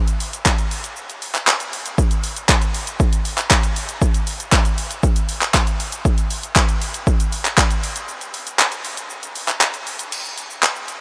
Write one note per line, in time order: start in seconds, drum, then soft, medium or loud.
0.08 closed hi-hat soft
0.08 shaker soft
0.20 open hi-hat medium
0.20 shaker medium
0.33 closed hi-hat medium
0.33 shaker medium
0.46 kick loud
0.46 clap loud
0.46 clap medium
0.46 shaker medium
0.58 closed hi-hat medium
0.58 shaker soft
0.71 open hi-hat medium
0.71 shaker medium
0.84 closed hi-hat medium
0.84 shaker medium
0.96 shaker medium
1.10 closed hi-hat medium
1.10 shaker medium
1.22 open hi-hat medium
1.22 shaker medium
1.35 clap medium
1.35 closed hi-hat medium
1.35 shaker medium
1.47 clap loud
1.47 clap medium
1.47 shaker medium
1.60 closed hi-hat medium
1.60 shaker medium
1.73 open hi-hat medium
1.73 shaker medium
1.86 closed hi-hat medium
1.86 shaker medium
1.98 kick loud
1.98 shaker medium
2.11 closed hi-hat soft
2.11 shaker soft
2.24 open hi-hat medium
2.24 shaker medium
2.37 closed hi-hat medium
2.37 shaker medium
2.49 kick loud
2.49 clap loud
2.49 clap medium
2.49 shaker medium
2.62 closed hi-hat medium
2.62 shaker soft
2.74 open hi-hat medium
2.74 shaker medium
2.87 closed hi-hat medium
2.87 shaker medium
3.00 kick loud
3.00 shaker medium
3.13 closed hi-hat medium
3.13 shaker medium
3.25 open hi-hat medium
3.25 shaker medium
3.38 clap medium
3.38 closed hi-hat medium
3.38 shaker medium
3.51 kick loud
3.51 clap loud
3.51 clap medium
3.51 shaker medium
3.63 closed hi-hat medium
3.63 shaker soft
3.76 open hi-hat medium
3.76 shaker medium
3.89 closed hi-hat medium
3.89 shaker medium
4.02 kick loud
4.02 shaker medium
4.14 closed hi-hat soft
4.14 shaker soft
4.27 open hi-hat medium
4.27 shaker medium
4.40 closed hi-hat medium
4.40 shaker medium
4.52 kick loud
4.52 clap loud
4.52 clap medium
4.52 shaker medium
4.65 closed hi-hat soft
4.65 shaker soft
4.78 open hi-hat medium
4.78 shaker medium
4.91 closed hi-hat medium
4.91 shaker medium
5.03 kick loud
5.03 shaker medium
5.16 closed hi-hat medium
5.16 shaker medium
5.29 open hi-hat medium
5.29 shaker medium
5.41 clap medium
5.41 closed hi-hat medium
5.41 shaker medium
5.54 kick loud
5.54 clap loud
5.54 shaker medium
5.67 closed hi-hat medium
5.67 shaker medium
5.80 open hi-hat medium
5.80 shaker medium
5.92 closed hi-hat medium
5.92 shaker medium
6.05 kick loud
6.05 shaker medium
6.18 closed hi-hat soft
6.18 shaker soft
6.30 open hi-hat medium
6.30 shaker medium
6.43 closed hi-hat medium
6.43 shaker medium
6.56 kick loud
6.56 clap loud
6.56 clap medium
6.56 shaker medium
6.69 closed hi-hat medium
6.69 shaker medium
6.82 open hi-hat medium
6.82 shaker medium
6.94 closed hi-hat medium
6.94 shaker medium
7.07 kick loud
7.07 shaker medium
7.20 closed hi-hat medium
7.20 shaker medium
7.32 open hi-hat medium
7.32 shaker medium
7.45 clap medium
7.45 closed hi-hat medium
7.45 shaker medium
7.58 kick loud
7.58 clap loud
7.58 clap medium
7.58 shaker medium
7.71 closed hi-hat medium
7.71 shaker medium
7.83 open hi-hat medium
7.83 shaker medium
7.96 closed hi-hat medium
7.96 shaker medium
8.09 shaker medium
8.21 closed hi-hat soft
8.21 shaker soft
8.34 open hi-hat medium
8.34 shaker medium
8.47 closed hi-hat medium
8.47 shaker medium
8.59 clap loud
8.59 clap medium
8.59 shaker medium
8.72 closed hi-hat medium
8.72 shaker soft
8.85 open hi-hat medium
8.85 shaker medium
8.97 closed hi-hat medium
8.97 shaker medium
9.10 shaker medium
9.23 closed hi-hat medium
9.23 shaker medium
9.36 open hi-hat medium
9.36 shaker medium
9.48 clap medium
9.48 closed hi-hat medium
9.48 shaker medium
9.61 clap loud
9.61 clap medium
9.61 shaker medium
9.74 closed hi-hat medium
9.74 shaker medium
9.87 open hi-hat medium
9.87 shaker medium
9.99 closed hi-hat medium
9.99 shaker medium
10.12 closed hi-hat medium
10.12 crash medium
10.12 shaker medium
10.25 shaker soft
10.38 closed hi-hat medium
10.38 shaker medium
10.50 shaker medium
10.63 clap loud
10.63 closed hi-hat medium
10.63 shaker medium
10.75 shaker soft
10.88 closed hi-hat medium
10.88 shaker medium